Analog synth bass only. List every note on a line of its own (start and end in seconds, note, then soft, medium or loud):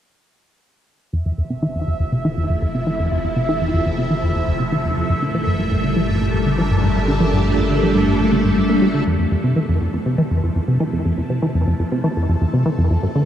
1.13 1.23 F2 medium
1.25 1.32 F2 medium
1.38 1.42 F2 medium
1.50 1.60 C3 medium
1.62 1.67 E3 medium
1.75 1.85 F2 medium
1.87 1.94 F2 medium
2.00 2.04 F2 medium
2.12 2.22 C3 medium
2.25 2.29 E3 medium
2.37 2.47 F2 medium
2.50 2.56 F2 medium
2.62 2.66 F2 medium
2.74 2.84 C3 medium
2.87 2.91 E3 medium
2.99 3.09 F2 medium
3.11 3.18 F2 medium
3.24 3.28 F2 medium
3.36 3.46 C3 medium
3.49 3.53 E3 medium
3.61 3.71 F2 medium
3.73 3.80 F2 medium
3.86 3.90 F2 medium
3.98 4.08 C3 medium
4.10 4.15 E3 medium
4.23 4.33 F2 medium
4.35 4.42 F2 medium
4.48 4.52 F2 medium
4.60 4.70 C3 medium
4.72 4.76 E3 medium
4.85 4.95 F2 medium
4.97 5.04 F2 medium
5.10 5.14 G2 medium
5.22 5.32 D3 medium
5.34 5.39 F3 medium
5.47 5.57 G2 medium
5.59 5.66 G2 medium
5.72 5.76 G2 medium
5.84 5.94 D3 medium
5.96 6.01 F3 medium
6.09 6.19 G2 medium
6.21 6.28 G2 medium
6.34 6.38 G2 medium
6.46 6.56 D3 medium
6.58 6.63 F3 medium
6.71 6.81 G2 medium
6.83 6.90 G2 medium
6.96 7.00 G2 medium
7.08 7.18 D3 medium
7.20 7.25 F3 medium
7.33 7.43 G2 medium
7.45 7.52 G2 medium
7.58 7.62 G2 medium
7.70 7.80 D3 medium
7.83 7.87 F3 medium
7.95 8.05 G2 medium
8.07 8.14 G2 medium
8.20 8.24 G2 medium
8.32 8.36 D3 medium
8.45 8.51 G2 medium
8.57 8.64 G2 medium
8.69 8.76 A#3 medium
8.82 8.89 G3 medium
8.94 9.01 D3 medium
9.07 9.17 F2 medium
9.19 9.26 F2 medium
9.31 9.35 F2 medium
9.44 9.54 C3 medium
9.56 9.60 E3 medium
9.69 9.79 F2 medium
9.81 9.88 F2 medium
9.93 9.98 F2 medium
10.06 10.16 C3 medium
10.18 10.22 E3 loud
10.31 10.41 F2 medium
10.43 10.50 F2 medium
10.55 10.59 F2 medium
10.68 10.78 C3 medium
10.80 10.84 E3 loud
10.93 11.03 F2 medium
11.05 11.12 F2 medium
11.17 11.21 F2 medium
11.30 11.40 C3 medium
11.42 11.46 E3 medium
11.55 11.65 F2 medium
11.67 11.74 F2 medium
11.79 11.83 F2 medium
11.92 12.02 C3 medium
12.04 12.08 E3 medium
12.16 12.27 F2 medium
12.29 12.36 F2 medium
12.41 12.45 F2 medium
12.53 12.64 C3 medium
12.66 12.70 E3 medium
12.78 12.88 F2 medium
12.90 12.97 F2 medium
13.03 13.07 G2 medium
13.15 13.25 D3 medium